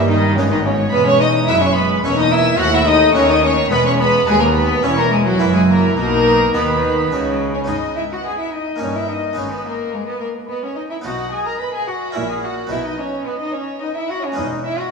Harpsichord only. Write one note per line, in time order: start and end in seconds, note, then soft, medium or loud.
0.00 0.34 G3 medium
0.00 0.22 A#3 medium
0.00 0.23 C#4 medium
0.00 0.23 D#4 medium
0.38 0.89 G#2 medium
0.38 0.89 G#3 medium
0.38 0.90 B3 soft
0.38 0.90 D#4 soft
0.93 1.44 E2 medium
1.48 2.00 F#2 medium
1.48 1.88 G#3 medium
1.48 1.89 B3 medium
1.48 1.89 E4 medium
2.04 2.56 E2 medium
2.04 2.44 G#3 medium
2.04 2.44 B3 medium
2.04 2.45 E4 medium
2.60 3.12 D#2 medium
3.15 3.67 D#3 medium
3.15 3.55 A3 medium
3.15 3.55 B3 medium
3.15 3.56 F#4 medium
3.71 4.23 E2 medium
3.71 4.23 G#3 medium
3.71 4.23 B3 medium
3.71 4.24 E4 medium
4.27 4.79 D#2 medium
4.27 4.79 B3 medium
4.27 4.79 F#4 medium
4.83 5.36 E2 medium
4.83 5.36 C#4 medium
4.83 5.36 E4 medium
4.83 5.36 G#4 medium
5.39 5.93 F#2 medium
5.39 5.93 C#4 soft
5.39 5.93 E4 medium
5.39 5.93 F#4 medium
5.97 6.50 B2 medium
6.54 7.08 D#3 medium
6.54 6.96 D#4 medium
6.54 6.96 F#4 medium
7.12 7.65 C#3 medium
7.12 7.53 D#4 soft
7.12 7.53 F#4 medium
7.64 8.75 B3 soft
7.64 8.76 D#4 soft
7.64 8.77 G#4 soft
7.69 8.13 G#2 soft
8.76 9.33 A#3 soft
8.76 9.34 C#4 soft
8.76 9.34 D#4 soft
8.81 9.24 G2 soft
9.33 10.99 G#3 soft
9.33 10.99 B3 soft
9.33 11.00 D#4 soft
9.37 9.81 G#2 soft
11.02 11.48 B2 soft
11.02 12.11 B3 soft
11.02 12.12 D#4 soft
12.12 12.59 A#2 soft
12.12 12.68 C#4 soft
12.12 12.68 E4 soft
12.67 13.14 B2 soft
12.67 14.32 B3 soft
12.67 14.32 D#4 soft
14.32 14.91 G#3 soft
14.32 14.91 B3 soft
14.32 14.91 C#4 soft
14.36 14.80 E2 medium